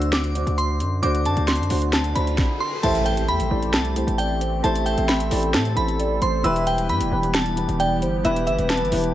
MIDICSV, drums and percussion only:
0, 0, Header, 1, 2, 480
1, 0, Start_track
1, 0, Tempo, 451128
1, 1095, Time_signature, 4, 2, 24, 8
1, 9726, End_track
2, 0, Start_track
2, 0, Title_t, "Drums"
2, 17, Note_on_c, 9, 42, 52
2, 124, Note_off_c, 9, 42, 0
2, 135, Note_on_c, 9, 38, 115
2, 135, Note_on_c, 9, 42, 84
2, 242, Note_off_c, 9, 38, 0
2, 242, Note_off_c, 9, 42, 0
2, 255, Note_on_c, 9, 42, 53
2, 361, Note_off_c, 9, 42, 0
2, 376, Note_on_c, 9, 42, 87
2, 482, Note_off_c, 9, 42, 0
2, 501, Note_on_c, 9, 42, 56
2, 607, Note_off_c, 9, 42, 0
2, 617, Note_on_c, 9, 42, 72
2, 724, Note_off_c, 9, 42, 0
2, 854, Note_on_c, 9, 42, 73
2, 960, Note_off_c, 9, 42, 0
2, 1094, Note_on_c, 9, 42, 80
2, 1201, Note_off_c, 9, 42, 0
2, 1219, Note_on_c, 9, 42, 61
2, 1326, Note_off_c, 9, 42, 0
2, 1334, Note_on_c, 9, 42, 73
2, 1441, Note_off_c, 9, 42, 0
2, 1455, Note_on_c, 9, 42, 60
2, 1561, Note_off_c, 9, 42, 0
2, 1574, Note_on_c, 9, 38, 100
2, 1574, Note_on_c, 9, 42, 81
2, 1655, Note_off_c, 9, 42, 0
2, 1655, Note_on_c, 9, 42, 66
2, 1681, Note_off_c, 9, 38, 0
2, 1735, Note_off_c, 9, 42, 0
2, 1735, Note_on_c, 9, 42, 48
2, 1811, Note_on_c, 9, 46, 95
2, 1841, Note_off_c, 9, 42, 0
2, 1917, Note_off_c, 9, 46, 0
2, 1935, Note_on_c, 9, 42, 51
2, 2042, Note_off_c, 9, 42, 0
2, 2053, Note_on_c, 9, 38, 114
2, 2054, Note_on_c, 9, 42, 84
2, 2160, Note_off_c, 9, 38, 0
2, 2160, Note_off_c, 9, 42, 0
2, 2173, Note_on_c, 9, 42, 52
2, 2279, Note_off_c, 9, 42, 0
2, 2293, Note_on_c, 9, 42, 87
2, 2400, Note_off_c, 9, 42, 0
2, 2419, Note_on_c, 9, 42, 57
2, 2525, Note_off_c, 9, 42, 0
2, 2533, Note_on_c, 9, 38, 91
2, 2535, Note_on_c, 9, 36, 110
2, 2640, Note_off_c, 9, 38, 0
2, 2641, Note_off_c, 9, 36, 0
2, 3015, Note_on_c, 9, 42, 84
2, 3015, Note_on_c, 9, 49, 106
2, 3121, Note_off_c, 9, 42, 0
2, 3121, Note_off_c, 9, 49, 0
2, 3139, Note_on_c, 9, 42, 65
2, 3245, Note_off_c, 9, 42, 0
2, 3254, Note_on_c, 9, 42, 72
2, 3361, Note_off_c, 9, 42, 0
2, 3376, Note_on_c, 9, 42, 61
2, 3482, Note_off_c, 9, 42, 0
2, 3495, Note_on_c, 9, 42, 49
2, 3601, Note_off_c, 9, 42, 0
2, 3615, Note_on_c, 9, 42, 85
2, 3722, Note_off_c, 9, 42, 0
2, 3857, Note_on_c, 9, 42, 52
2, 3964, Note_off_c, 9, 42, 0
2, 3975, Note_on_c, 9, 38, 119
2, 3975, Note_on_c, 9, 42, 87
2, 4082, Note_off_c, 9, 38, 0
2, 4082, Note_off_c, 9, 42, 0
2, 4094, Note_on_c, 9, 42, 54
2, 4201, Note_off_c, 9, 42, 0
2, 4215, Note_on_c, 9, 42, 93
2, 4322, Note_off_c, 9, 42, 0
2, 4340, Note_on_c, 9, 42, 58
2, 4446, Note_off_c, 9, 42, 0
2, 4457, Note_on_c, 9, 42, 73
2, 4564, Note_off_c, 9, 42, 0
2, 4694, Note_on_c, 9, 42, 77
2, 4800, Note_off_c, 9, 42, 0
2, 4935, Note_on_c, 9, 42, 84
2, 5042, Note_off_c, 9, 42, 0
2, 5059, Note_on_c, 9, 42, 64
2, 5165, Note_off_c, 9, 42, 0
2, 5173, Note_on_c, 9, 42, 74
2, 5280, Note_off_c, 9, 42, 0
2, 5295, Note_on_c, 9, 42, 63
2, 5401, Note_off_c, 9, 42, 0
2, 5415, Note_on_c, 9, 38, 99
2, 5415, Note_on_c, 9, 42, 50
2, 5521, Note_off_c, 9, 38, 0
2, 5521, Note_off_c, 9, 42, 0
2, 5536, Note_on_c, 9, 42, 87
2, 5642, Note_off_c, 9, 42, 0
2, 5651, Note_on_c, 9, 46, 94
2, 5758, Note_off_c, 9, 46, 0
2, 5776, Note_on_c, 9, 42, 54
2, 5882, Note_off_c, 9, 42, 0
2, 5895, Note_on_c, 9, 38, 119
2, 5895, Note_on_c, 9, 42, 88
2, 6002, Note_off_c, 9, 38, 0
2, 6002, Note_off_c, 9, 42, 0
2, 6015, Note_on_c, 9, 42, 53
2, 6121, Note_off_c, 9, 42, 0
2, 6136, Note_on_c, 9, 42, 88
2, 6243, Note_off_c, 9, 42, 0
2, 6261, Note_on_c, 9, 42, 57
2, 6368, Note_off_c, 9, 42, 0
2, 6379, Note_on_c, 9, 42, 75
2, 6485, Note_off_c, 9, 42, 0
2, 6615, Note_on_c, 9, 42, 72
2, 6721, Note_off_c, 9, 42, 0
2, 6855, Note_on_c, 9, 42, 83
2, 6961, Note_off_c, 9, 42, 0
2, 6980, Note_on_c, 9, 42, 64
2, 7086, Note_off_c, 9, 42, 0
2, 7095, Note_on_c, 9, 42, 72
2, 7201, Note_off_c, 9, 42, 0
2, 7215, Note_on_c, 9, 42, 62
2, 7322, Note_off_c, 9, 42, 0
2, 7335, Note_on_c, 9, 42, 51
2, 7441, Note_off_c, 9, 42, 0
2, 7454, Note_on_c, 9, 42, 88
2, 7561, Note_off_c, 9, 42, 0
2, 7696, Note_on_c, 9, 42, 53
2, 7802, Note_off_c, 9, 42, 0
2, 7815, Note_on_c, 9, 38, 117
2, 7815, Note_on_c, 9, 42, 82
2, 7921, Note_off_c, 9, 38, 0
2, 7921, Note_off_c, 9, 42, 0
2, 7935, Note_on_c, 9, 42, 53
2, 8041, Note_off_c, 9, 42, 0
2, 8055, Note_on_c, 9, 42, 89
2, 8162, Note_off_c, 9, 42, 0
2, 8180, Note_on_c, 9, 42, 57
2, 8286, Note_off_c, 9, 42, 0
2, 8297, Note_on_c, 9, 42, 74
2, 8404, Note_off_c, 9, 42, 0
2, 8534, Note_on_c, 9, 42, 73
2, 8640, Note_off_c, 9, 42, 0
2, 8774, Note_on_c, 9, 42, 86
2, 8881, Note_off_c, 9, 42, 0
2, 8898, Note_on_c, 9, 42, 65
2, 9005, Note_off_c, 9, 42, 0
2, 9014, Note_on_c, 9, 42, 74
2, 9120, Note_off_c, 9, 42, 0
2, 9135, Note_on_c, 9, 42, 62
2, 9241, Note_off_c, 9, 42, 0
2, 9255, Note_on_c, 9, 38, 104
2, 9255, Note_on_c, 9, 42, 82
2, 9334, Note_off_c, 9, 42, 0
2, 9334, Note_on_c, 9, 42, 66
2, 9361, Note_off_c, 9, 38, 0
2, 9415, Note_off_c, 9, 42, 0
2, 9415, Note_on_c, 9, 42, 51
2, 9490, Note_on_c, 9, 46, 96
2, 9521, Note_off_c, 9, 42, 0
2, 9597, Note_off_c, 9, 46, 0
2, 9616, Note_on_c, 9, 42, 54
2, 9723, Note_off_c, 9, 42, 0
2, 9726, End_track
0, 0, End_of_file